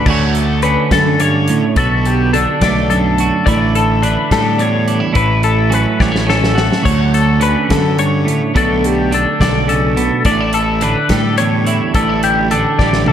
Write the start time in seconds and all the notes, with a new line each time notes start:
0.06 D2 D3 A3 C#4 C#5, kick, crash
0.10 F#4
0.34 A4, closed hi-hat
0.62 D3 C#4 B4, closed hi-hat
0.91 F#2 D3 A4, kick, snare, closed hi-hat
1.20 G2 C#5, closed hi-hat
1.48 A2, closed hi-hat
1.76 B1 B2 F#4 A4, kick, closed hi-hat
2.05 G4, closed hi-hat
2.33 D3 D4 A4, closed hi-hat
2.61 B1 A3 D5, kick, snare, closed hi-hat
2.90 F#2 D4 A4, closed hi-hat
3.18 F#4, closed hi-hat
3.46 A1 A2 E4 D5, kick, closed hi-hat
3.75 A4, closed hi-hat
4.02 D3 D4 B4, closed hi-hat
4.31 A2 G3 A4, kick, snare, closed hi-hat
4.58 E2 D4 C#5, closed hi-hat
4.88 D4, closed hi-hat
5.00 E4
5.13 A1 A2 E4 B4, kick, closed hi-hat
5.43 A4, closed hi-hat
5.70 F#3 C#4 B4, closed hi-hat
6.00 A1 G3 C#5, kick, snare
6.12 A3, snare
6.26 A2 C#4 A4, snare
6.44 snare
6.55 F#4, snare
6.73 snare
6.83 D2 F#4 C#5, kick, closed hi-hat, crash
7.14 A4, closed hi-hat
7.40 D3 C#4 B4, closed hi-hat
7.69 F#2 D3 A4, kick, snare, closed hi-hat
7.99 G2 C#5, closed hi-hat
8.25 A2, closed hi-hat
8.54 B1 B2 D3 A3 D4 F#4 A4, kick, closed hi-hat
8.84 G4, closed hi-hat
9.11 D3 D4 A4, closed hi-hat
9.40 B1 D3 D5, kick, snare, closed hi-hat
9.68 C#3 A4, closed hi-hat
9.97 B2, closed hi-hat
10.25 A1 A2 D4 D5, kick, closed hi-hat
10.40 E4
10.53 A4, closed hi-hat
10.81 D3 D4 B4, closed hi-hat
11.09 A2 G3 A4, kick, snare, closed hi-hat
11.38 E2 D4 C#5, closed hi-hat
11.66 E4, closed hi-hat
11.94 A1 A2 D4 A4, kick, closed hi-hat
12.09 E4
12.23 G4, closed hi-hat
12.51 D3 D4 A4, closed hi-hat
12.79 A1 G3 D5, kick, snare
12.93 snare
13.06 A4, high tom